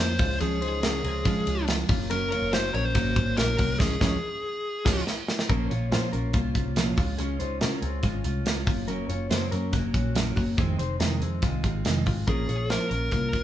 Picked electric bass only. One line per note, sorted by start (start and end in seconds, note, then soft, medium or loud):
0.00 0.16 F2 medium
0.19 0.38 C#2 medium
0.41 1.01 C#2 loud
1.04 1.22 C#2 medium
1.26 1.44 C#3 loud
1.47 1.83 C#2 medium
1.89 2.34 F#1 loud
2.42 2.69 F#1 medium
2.74 2.92 A#1 loud
2.95 3.13 G#1 loud
3.16 3.34 G#1 medium
3.38 3.56 A#1 medium
3.59 3.77 C2 loud
3.80 3.94 C#2 loud
4.01 4.15 C#2 loud
4.86 5.00 C#2 loud
5.50 5.68 A#1 loud
5.71 5.93 A#1 medium
5.92 6.10 A#2 medium
6.13 6.31 A#1 medium
6.34 6.52 C2 loud
6.55 6.91 C2 medium
6.98 7.16 C#2 loud
7.19 7.37 C#2 loud
7.40 7.63 C#2 medium
7.61 7.79 C#3 medium
7.82 8.00 C#2 medium
8.03 8.22 G#1 loud
8.25 8.43 C2 loud
8.67 9.03 F#1 loud
9.09 9.27 F#1 medium
9.31 9.49 F#2 medium
9.52 9.74 F#2 medium
9.73 9.91 F#1 loud
9.94 10.30 A#1 medium
10.37 10.55 F#1 loud
10.58 10.76 F1 loud
10.79 10.97 F1 medium
11.00 11.18 F2 loud
11.21 11.39 F2 medium
11.43 11.61 C2 medium
11.64 11.82 G#1 medium
11.85 12.03 F1 medium
12.07 12.24 G#1 medium
12.28 12.46 A#1 loud
12.49 12.76 A#1 medium
12.91 13.09 A#1 medium
13.12 13.30 C2 medium
13.33 13.43 C#2 medium